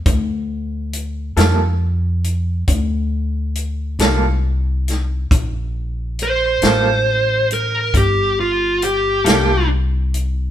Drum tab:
HH |x-xx-xx-xx-x|x-xx-xx-xx-x|
SD |---o-----o-o|---o-----o--|
BD |o-----o-----|o-----o-----|